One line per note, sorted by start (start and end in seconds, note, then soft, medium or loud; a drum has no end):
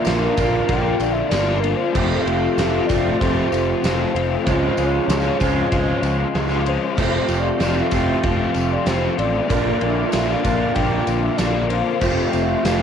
0.00 0.34 A#2 medium
0.00 0.67 D3 medium
0.00 0.38 F3 loud
0.00 0.35 A#3 loud
0.00 0.36 A#3 medium
0.00 0.35 D4 loud
0.00 0.36 F4 loud
0.00 11.97 F4 medium
0.00 1.92 A#4 medium
0.00 1.92 D5 medium
0.00 0.26 E5 medium
0.00 1.91 A#5 medium
0.04 0.27 A#1 loud
0.04 1.95 F3 medium
0.04 0.37 A#3 medium
0.04 0.36 D4 medium
0.04 0.36 F4 loud
0.04 snare loud
0.04 ride loud
0.04 tambourine medium
0.24 0.67 F5 loud
0.37 0.58 A#1 medium
0.37 1.94 A#2 medium
0.37 1.93 F3 medium
0.37 0.68 A#3 medium
0.37 0.69 D4 medium
0.37 0.70 F4 medium
0.37 kick loud
0.37 ride medium
0.37 tambourine medium
0.65 1.31 A#2 loud
0.65 1.29 D3 loud
0.65 1.00 A#3 medium
0.65 1.14 G5 loud
0.65 kick loud
0.65 ride loud
0.65 tambourine soft
0.69 0.90 A#1 loud
0.69 0.99 D4 loud
0.69 0.98 F4 loud
0.99 1.21 A#1 medium
0.99 1.30 A#3 medium
0.99 1.30 D4 medium
0.99 1.32 F4 medium
0.99 ride medium
0.99 tambourine medium
1.13 1.31 E5 loud
1.29 1.73 G1 medium
1.29 1.92 D3 medium
1.29 1.63 A#3 medium
1.29 1.62 D4 medium
1.29 1.62 F4 medium
1.29 1.61 D5 loud
1.29 snare loud
1.29 ride loud
1.29 tambourine medium
1.60 1.93 D4 medium
1.60 1.95 F4 medium
1.60 1.77 A#4 loud
1.60 ride medium
1.64 1.93 A#3 medium
1.76 2.23 C5 loud
1.92 2.16 F1 loud
1.92 2.57 F2 medium
1.92 2.57 C3 loud
1.92 2.26 F3 medium
1.92 2.25 A3 medium
1.92 2.25 C4 medium
1.92 2.24 F4 loud
1.92 2.87 G4 loud
1.92 4.43 A4 medium
1.92 4.43 G5 medium
1.92 9.45 C6 loud
1.92 kick loud
1.92 crash loud
1.92 tambourine medium
2.22 2.46 F1 medium
2.22 2.57 C4 medium
2.22 2.58 F4 medium
2.22 2.56 F5 loud
2.26 2.55 F3 medium
2.26 2.55 A3 medium
2.26 ride medium
2.54 2.78 F1 loud
2.54 2.90 F3 medium
2.54 2.88 A3 medium
2.54 2.89 C4 medium
2.54 2.87 F4 loud
2.54 2.88 E5 loud
2.54 tambourine loud
2.59 snare loud
2.59 ride loud
2.87 3.10 F1 medium
2.87 3.20 F3 medium
2.87 3.21 A3 medium
2.87 3.21 C4 medium
2.87 3.22 F4 medium
2.87 4.44 G4 medium
2.87 3.18 D5 loud
2.87 kick loud
2.87 tambourine medium
2.91 ride medium
3.19 3.42 F1 medium
3.19 3.83 F2 medium
3.19 3.84 C3 loud
3.19 3.54 F3 loud
3.19 3.52 A3 loud
3.19 3.53 C4 loud
3.19 3.52 F4 loud
3.19 4.14 G4 medium
3.19 4.10 C5 loud
3.19 kick loud
3.19 ride loud
3.19 tambourine soft
3.52 3.73 F1 medium
3.52 3.83 F3 medium
3.52 3.83 A3 medium
3.52 3.85 C4 medium
3.52 3.86 F4 medium
3.52 ride medium
3.52 tambourine medium
3.84 4.04 F1 medium
3.84 4.17 F3 medium
3.84 4.15 A3 medium
3.84 4.15 C4 medium
3.84 4.14 F4 medium
3.84 snare loud
3.84 ride loud
3.84 tambourine loud
4.13 4.35 F1 medium
4.13 4.45 A3 medium
4.13 4.48 C4 medium
4.13 4.49 F4 medium
4.13 4.46 G4 medium
4.13 4.43 C5 loud
4.13 ride medium
4.17 4.47 F3 medium
4.44 4.68 C#2 loud
4.44 5.09 C#3 medium
4.44 5.08 F3 loud
4.44 6.96 C#4 medium
4.44 4.87 C5 loud
4.44 6.95 G#5 medium
4.44 kick loud
4.44 ride loud
4.44 tambourine medium
4.48 4.79 G#3 loud
4.48 4.77 C#4 loud
4.48 4.77 F4 medium
4.77 4.98 C#2 medium
4.77 5.09 G#3 medium
4.77 5.09 C#4 medium
4.77 5.11 F4 medium
4.77 ride medium
4.77 tambourine medium
4.86 5.40 C#5 medium
5.08 5.29 C#2 loud
5.08 5.70 F3 medium
5.08 5.40 G#3 medium
5.08 5.39 C#4 loud
5.08 5.39 F4 medium
5.08 snare loud
5.08 ride loud
5.08 tambourine loud
5.39 5.61 C#2 medium
5.39 6.96 F3 medium
5.39 5.70 G#3 medium
5.39 5.70 C#4 medium
5.39 5.72 F4 medium
5.39 6.34 C5 loud
5.39 kick medium
5.39 ride medium
5.39 tambourine medium
5.43 6.97 C#3 medium
5.70 5.93 C#2 medium
5.70 6.34 C#3 loud
5.70 6.32 F3 medium
5.70 6.03 G#3 loud
5.70 6.02 C#4 medium
5.70 6.02 F4 loud
5.70 6.65 G#4 medium
5.70 kick loud
5.70 ride loud
5.70 tambourine soft
6.02 6.23 C#2 medium
6.02 6.33 G#3 medium
6.02 6.33 C#4 medium
6.02 6.34 F4 medium
6.02 ride medium
6.02 tambourine medium
6.32 6.76 C#2 loud
6.32 6.97 F3 medium
6.32 6.67 G#3 medium
6.32 6.65 C#4 medium
6.32 6.65 F4 medium
6.32 snare loud
6.32 ride loud
6.32 tambourine loud
6.65 6.97 G#3 medium
6.65 6.96 C#4 medium
6.65 6.98 F4 medium
6.65 6.97 G#4 medium
6.65 6.96 C5 loud
6.65 ride medium
6.96 7.18 F1 loud
6.96 7.59 F2 medium
6.96 7.60 C3 medium
6.96 7.29 F3 medium
6.96 7.28 A3 medium
6.96 7.27 C4 loud
6.96 7.27 F4 loud
6.96 9.46 A4 medium
6.96 7.42 C5 loud
6.96 9.46 G5 medium
6.96 kick loud
6.96 crash loud
6.96 tambourine medium
7.01 7.90 G4 loud
7.27 7.50 F1 loud
7.27 7.58 F3 medium
7.27 7.58 A3 medium
7.27 7.59 C4 medium
7.27 7.60 F4 medium
7.27 ride medium
7.27 tambourine medium
7.40 7.84 D5 medium
7.59 7.81 F1 loud
7.59 7.94 F3 medium
7.59 7.91 A3 medium
7.59 7.91 C4 medium
7.59 7.91 F4 medium
7.59 snare loud
7.59 ride loud
7.59 tambourine loud
7.82 8.27 E5 medium
7.91 8.13 F1 medium
7.91 8.23 F3 medium
7.91 8.23 A3 medium
7.91 8.23 C4 medium
7.91 8.25 F4 medium
7.91 9.47 G4 medium
7.91 kick medium
7.91 ride medium
7.91 tambourine medium
8.22 8.45 F1 medium
8.22 8.86 F2 loud
8.22 8.86 C3 medium
8.22 8.56 F3 loud
8.22 8.54 A3 loud
8.22 8.54 C4 loud
8.22 8.54 F4 loud
8.22 9.17 G4 medium
8.22 8.74 F5 loud
8.22 kick loud
8.22 ride loud
8.22 tambourine soft
8.54 8.76 F1 medium
8.54 8.84 F3 medium
8.54 8.85 A3 medium
8.54 8.86 C4 medium
8.54 8.87 F4 medium
8.54 ride medium
8.54 tambourine medium
8.73 8.89 D5 medium
8.85 9.07 F1 loud
8.85 9.18 F3 medium
8.85 9.16 A3 medium
8.85 9.15 C4 medium
8.85 9.16 F4 medium
8.85 9.18 C5 loud
8.85 snare loud
8.85 ride medium
8.85 tambourine loud
9.16 9.39 A1 loud
9.16 9.47 F3 medium
9.16 9.47 A3 medium
9.16 9.47 C4 medium
9.16 9.49 F4 medium
9.16 9.49 G4 medium
9.16 9.48 D5 medium
9.16 ride medium
9.47 9.71 A#1 loud
9.47 10.11 A#2 medium
9.47 10.10 D3 loud
9.47 9.81 A#3 medium
9.47 9.80 D4 medium
9.47 9.79 F4 medium
9.47 11.99 A#4 medium
9.47 11.99 D5 medium
9.47 11.98 A#5 loud
9.47 kick loud
9.47 ride loud
9.47 tambourine medium
9.79 10.02 A#1 loud
9.79 10.11 A#3 medium
9.79 10.13 D4 medium
9.79 10.13 F4 medium
9.79 ride medium
9.90 10.34 E5 medium
10.11 10.34 A#1 loud
10.11 10.73 D3 medium
10.11 10.44 A#3 medium
10.11 10.42 D4 medium
10.11 10.42 F4 loud
10.11 snare loud
10.11 ride loud
10.11 tambourine loud
10.33 10.76 F5 loud
10.42 10.65 A#1 medium
10.42 10.73 A#3 medium
10.42 10.73 D4 medium
10.42 10.74 F4 medium
10.42 kick loud
10.42 ride medium
10.42 tambourine medium
10.47 12.01 A#2 medium
10.47 12.01 D3 medium
10.73 10.97 A#1 medium
10.73 11.37 A#2 loud
10.73 11.36 D3 loud
10.73 11.07 A#3 loud
10.73 11.06 D4 loud
10.73 11.06 F4 loud
10.73 11.22 G5 loud
10.73 kick loud
10.73 ride loud
10.73 tambourine soft
11.06 11.28 A#1 medium
11.06 11.37 A#3 medium
11.06 11.38 D4 medium
11.06 11.39 F4 medium
11.06 ride medium
11.06 tambourine medium
11.23 11.39 E5 medium
11.37 11.81 A#1 loud
11.37 11.99 D3 medium
11.37 11.70 A#3 medium
11.37 11.69 D4 medium
11.37 11.69 F4 medium
11.37 11.71 D5 loud
11.37 snare loud
11.37 ride loud
11.37 tambourine loud
11.69 12.00 A#3 medium
11.69 12.00 D4 medium
11.69 12.03 F4 medium
11.69 12.44 C5 loud
11.69 ride medium
12.01 12.23 F1 loud
12.01 12.64 F2 loud
12.01 12.64 C3 medium
12.01 12.34 F3 medium
12.01 12.33 A3 loud
12.01 12.32 C4 loud
12.01 12.32 F4 loud
12.01 12.82 F4 medium
12.01 12.82 G4 loud
12.01 12.82 A4 medium
12.01 12.82 G5 medium
12.01 12.82 C6 medium
12.01 kick loud
12.01 tambourine medium
12.01 crash loud
12.32 12.54 F1 medium
12.32 12.63 F3 medium
12.32 12.63 A3 medium
12.32 12.64 C4 medium
12.32 12.65 F4 medium
12.32 ride medium
12.32 tambourine medium
12.43 12.65 E5 loud
12.63 12.82 F1 loud
12.63 12.82 F3 medium
12.63 12.82 A3 medium
12.63 12.82 C4 medium
12.63 12.82 F4 medium
12.63 12.82 F5 loud
12.63 snare loud
12.63 ride loud
12.63 tambourine loud